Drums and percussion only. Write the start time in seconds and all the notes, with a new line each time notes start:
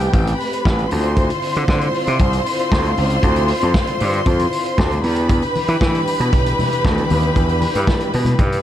0.01 closed hi-hat
0.14 kick, closed hi-hat
0.27 closed hi-hat
0.40 open hi-hat
0.53 closed hi-hat
0.65 kick, snare
0.79 closed hi-hat
0.91 open hi-hat
1.03 closed hi-hat
1.17 kick, closed hi-hat
1.30 closed hi-hat
1.42 open hi-hat
1.55 closed hi-hat
1.68 kick, snare
1.81 closed hi-hat
1.94 open hi-hat
2.07 closed hi-hat
2.19 kick, closed hi-hat
2.33 closed hi-hat
2.46 open hi-hat
2.59 closed hi-hat
2.72 kick, snare
2.85 closed hi-hat
2.97 open hi-hat
3.10 closed hi-hat
3.23 kick, closed hi-hat
3.36 closed hi-hat
3.48 open hi-hat
3.61 closed hi-hat
3.74 kick, snare
3.87 closed hi-hat
4.00 open hi-hat
4.13 closed hi-hat
4.26 kick, closed hi-hat
4.39 closed hi-hat
4.53 open hi-hat
4.66 closed hi-hat
4.78 kick, snare
4.91 closed hi-hat
5.04 open hi-hat
5.16 closed hi-hat
5.29 kick, closed hi-hat, muted conga
5.42 closed hi-hat
5.55 open hi-hat, muted conga
5.68 closed hi-hat
5.81 kick, snare, high conga
5.95 closed hi-hat
6.07 open hi-hat
6.21 closed hi-hat
6.33 kick, closed hi-hat, muted conga
6.46 closed hi-hat
6.59 open hi-hat, muted conga, low conga
6.72 closed hi-hat
6.85 kick, snare, high conga
6.97 closed hi-hat, high conga
7.10 open hi-hat, high conga
7.23 closed hi-hat
7.35 kick, closed hi-hat, muted conga
7.49 closed hi-hat
7.62 open hi-hat, muted conga
7.75 closed hi-hat
7.87 kick, snare, high conga
8.00 closed hi-hat
8.13 open hi-hat
8.25 closed hi-hat, low conga
8.39 kick, closed hi-hat, muted conga
8.52 closed hi-hat